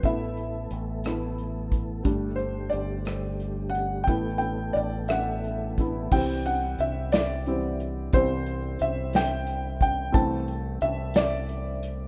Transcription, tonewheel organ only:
\new Staff \with { instrumentName = "Tonewheel organ" } { \time 6/8 \key c \lydian \tempo 4. = 59 <e a b a'>2. | <d g a g'>2. | <e b a'>2. | r2. |
r2. | r2. | }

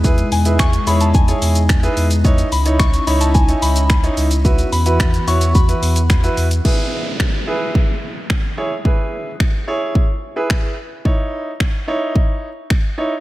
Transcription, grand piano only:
\new Staff \with { instrumentName = "Grand piano" } { \time 4/4 \key e \major \tempo 4 = 109 <e' gis' b'>8 r16 <e' gis' b'>8 r16 <e' gis' cis''>8 r16 <e' gis' cis''>8 r8 <e' gis' b'>8 r16 | <dis' e' cis''>8 r16 <dis' e' cis''>8 r16 <dis' e' cis''>8 r16 <dis' e' cis''>8 r8 <dis' e' cis''>8 r16 | <e' fis' b'>8 r16 <e' fis' b'>8 r16 <e' fis' cis''>8 r16 <e' fis' b'>8 r8 <e' fis' b'>8 r16 | <e' gis' b'>8. r8. <e' gis' b'>4 r4 <e' gis' cis''>16 r16 |
<e' gis' b'>8. r8. <e' gis' cis''>8. r8 <e' gis' b'>8. r8 | <dis' e' cis''>8. r8. <dis' e' cis''>4 r4 <dis' e' cis''>16 r16 | }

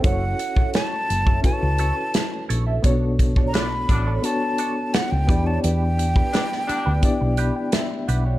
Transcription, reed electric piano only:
\new Staff \with { instrumentName = "Reed electric piano" } { \time 4/4 \key b \minor \tempo 4 = 86 << { r1 | r1 | r2 r8 b''16 g''16 e''8 fis''8 | } \\ { <cis' e' fis' a' c'' cis''>4~ <cis' e' fis' a' c'' cis''>16 r8. <cis' e' fis' a' b' cis''>4~ <cis' e' fis' a' b' cis''>16 r8. | <b cis' d' fis' a' cis''>4~ <b cis' d' fis' a' cis''>16 r8. <b d' fis' a' cis''>4~ <b d' fis' a' cis''>16 r16 <b d' e' g' d''>8~ | <b d' e' g' d''>4 r4 <b d' e' g' d''>4~ <b d' e' g' d''>16 r8. | } >> }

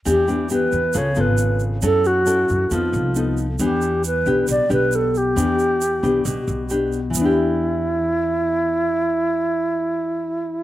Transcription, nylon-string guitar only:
\new Staff \with { instrumentName = "Nylon-string guitar" } { \time 4/4 \key e \minor \tempo 4 = 136 << { <b d' g'>8 <b d' g'>8 <b d' g'>8 r8 <b eis' a'>8 <b eis' a'>4. | <cis' e' a'>4 <cis' e' a'>4 <b ees' a'>4 <b ees' a'>8 r8 | <b d' g'>4 r8 <b d' g'>4 <b d' g'>4. | <b d' g'>4 r8 <b d' g'>4. <b d' g'>8 r8 |
<e b d' g'>1~ | <e b d' g'>1 | } \\ { e2 cis2 | fis2 f2 | e2 b,2 | e2 b,2 |
r1 | r1 | } >> }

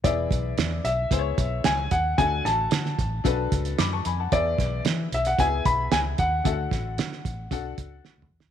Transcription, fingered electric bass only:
\new Staff \with { instrumentName = "Fingered electric bass" } { \clef bass \time 4/4 \key e \mixolydian \tempo 4 = 112 e,,8 b,,8 e,8 b,,8 cis,8 b,,8 cis,8 dis,8 | d,8 a,,8 d8 a,,8 b,,8 cis,8 fis,8 f,8 | e,8 b,,8 e8 b,,8 cis,8 b,,8 cis,8 dis,8 | d,8 a,,8 d8 a,,8 b,,8 cis,8 r16 d,16 e,16 dis,16 | }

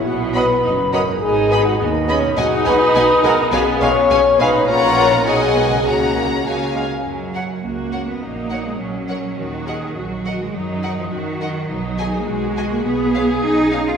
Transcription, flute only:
\new Staff \with { instrumentName = "Flute" } { \time 2/4 \key gis \minor \tempo 4 = 103 fis''8 b''4 ais''8 | gis''8. fis''16 dis''4 | \key fis \major fis''8 b''4 ais''8 | gis''8 cis'''4 b''8 |
cis'''8. ais''16 gis''8. r16 | fis''4 r4 | r2 | r2 |
r2 | r2 | r2 | r2 | }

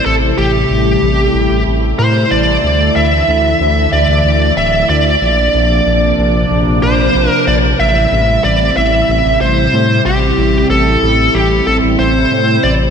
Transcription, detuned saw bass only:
\new Staff \with { instrumentName = "Detuned saw bass" } { \clef bass \time 4/4 \key a \phrygian \tempo 4 = 93 a,,8 a,,8 a,,8 a,,8 a,,16 a,,16 a,,8 a,8 a,,8 | d,8 d,8 d,8 d,8 d,16 d,16 d,8 d,,8 d,8 | bes,,8 bes,,8 bes,,8 bes,,8 bes,,16 bes,,16 bes,,8 bes,,16 r16 bes,,8 | a,,8 a,,8 a,,8 a,,8 a,,16 a,,16 a,,8 a,8 a,,8 |
a,,8 a,,8 a,,8 a,,8 a,,16 a,,16 a,,8 a,8 a,,8 | }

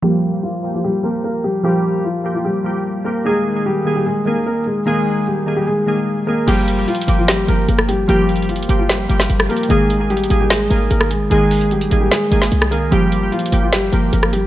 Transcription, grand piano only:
\new Staff \with { instrumentName = "Grand piano" } { \time 4/4 \key g \phrygian \tempo 4 = 149 <g g'>4 <f f'>8. <f f'>16 <g g'>8 <bes bes'>8 <bes bes'>8 <g g'>8 | <g g'>4 <f f'>8. <f f'>16 <g g'>4. <bes bes'>8 | <aes aes'>4 <g g'>8. <g g'>16 <aes aes'>8 <bes bes'>8 <bes bes'>8 <aes aes'>8 | <aes aes'>4 <g g'>8. <g g'>16 <aes aes'>4. <bes bes'>8 |
<g g'>4 <f f'>8. <f f'>16 <g g'>8 <bes bes'>8 <bes bes'>8 <g g'>8 | <g g'>4 <f f'>8. <f f'>16 <g g'>4. <bes bes'>8 | <aes aes'>4 <g g'>8. <g g'>16 <aes aes'>8 <bes bes'>8 <bes bes'>8 <aes aes'>8 | <aes aes'>4 <g g'>8. <g g'>16 <aes aes'>4. <bes bes'>8 |
<g g'>4 <f f'>8. <f f'>16 <g g'>8 <bes bes'>8 <bes bes'>8 <g g'>8 | }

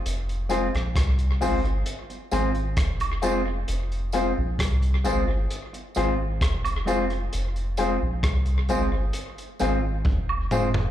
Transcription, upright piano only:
\new Staff \with { instrumentName = "Upright piano" } { \time 4/4 \key f \minor \tempo 4 = 66 r8 <f' aes' c''>16 r8. <f' aes' c''>16 <aes' c''>16 r8 <f' aes' c''>16 r8. <f' aes' c''>16 r16 | r8 <f' aes' c''>16 r8. <f' aes' c''>16 <aes' c''>16 r8 <f' aes' c''>16 r8. <f' aes' c''>16 r16 | r8 <f' aes' c''>16 r8. <f' aes' c''>16 <aes' c''>16 r8 <f' aes' c''>16 r8. <f' aes' c''>16 r16 | }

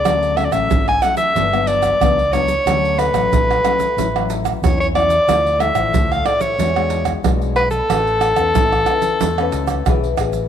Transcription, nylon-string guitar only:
\new Staff \with { instrumentName = "Nylon-string guitar" } { \time 4/4 \key a \major \tempo 4 = 92 << { <fis a cis'>8 <fis a cis'>16 <fis a cis'>8. <fis a cis'>8 <fis b d'>16 <fis b d'>8. <fis b d'>16 r16 <fis b d'>16 r16 | <fis a cis'>8 <fis a cis'>16 <fis a cis'>8. <fis a cis'>16 r16 <fis cis' e'>16 <fis cis' e'>8. <fis cis' e'>8 <fis cis' e'>16 r16 | <f a e'>8 <f a e'>16 <f a e'>8. <f a e'>8 <gis d' fis'>16 <gis d' fis'>8. <gis d' fis'>8. r16 | <cis' b'>8. <cis' b'>8. <cis' b'>8 r16 <cis' b'>8. <cis' gis' b'>16 r16 <cis' gis' b'>16 r16 | } \\ { d4 r4 g,4 r4 | d4 a,4 a,4 e4 | d4 a,4 e4 b,4 | a4 e4 a4 e4 | } >> }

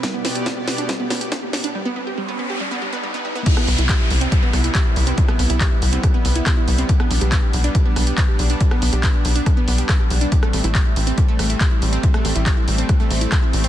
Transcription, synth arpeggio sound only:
\new Staff \with { instrumentName = "Synth arpeggio sound" } { \time 4/4 \key c \major \tempo 4 = 140 g16 b16 b16 g'16 b'16 g'16 r16 d'16 g16 b16 b16 g'16 b'16 g'16 r16 d'16 | g16 b16 b16 g'16 g16 b16 b16 g'16 g16 b16 g16 b16 g16 b16 g16 b16 | g16 b16 b16 e'16 g'16 e'16 r16 c'16 g16 b16 b16 e'16 g'16 e'16 r16 c'16 | g16 b16 b16 e'16 g'16 e'16 r16 c'16 g16 b16 b16 e'16 g'16 e'16 r16 c'16 |
g16 b16 b16 g'16 b'16 g'16 r16 d'16 g16 b16 b16 g'16 b'16 g'16 r16 d'16 | g16 b16 b16 g'16 r16 g'16 r16 d'16 g16 b16 b16 g'16 b'16 g'16 r16 d'16 | g16 a16 a16 e'16 g'16 e'16 r16 c'16 g16 a16 a16 e'16 g'16 e'16 r16 c'16 | g16 a16 a16 e'16 g'16 e'16 r16 c'16 g16 a16 a16 e'16 g'16 e'16 r16 c'16 | }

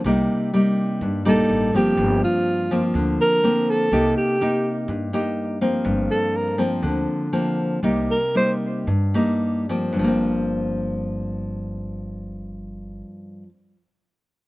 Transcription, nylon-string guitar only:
\new Staff \with { instrumentName = "Nylon-string guitar" } { \time 4/4 \key g \minor \tempo 4 = 122 << { <g bes ees'>4 <g bes ees'>4. <g bes ees'>4 <f bes c'>8~ | <f bes c'>4. <f bes c'>4. <f bes c'>4 | <bes ees' g'>4 <bes ees' g'>4. <bes ees' g'>4 <f bes c'>8~ | <f bes c'>4. <f bes c'>4. <f bes c'>4 |
<g bes ees'>8 r8 <g bes ees'>4 r8 <g bes ees'>4 <f bes c'>8~ | <f bes c'>4 r2. | r1 | } \\ { c2 g,2 | g,2 d2 | c2 g,2 | g,2 d2 |
c2 g,2 | <g, f bes c'>1~ | <g, f bes c'>1 | } >> }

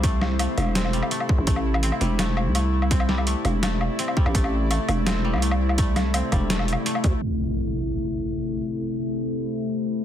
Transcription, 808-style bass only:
\new Staff \with { instrumentName = "808-style bass" } { \clef bass \time 4/4 \key a \minor \tempo 4 = 167 c,4~ c,16 r16 e,,4~ e,,16 r4 a,,16 | a,,4~ a,,16 r16 e,,4~ e,,16 c,4~ c,16~ | c,4~ c,16 r16 e,,4~ e,,16 r4 a,,16 | a,,4~ a,,16 r16 e,,4~ e,,16 c,4~ c,16~ |
c,4~ c,16 r16 e,,4~ e,,16 r8. d,16 r16 | r1 | r1 | }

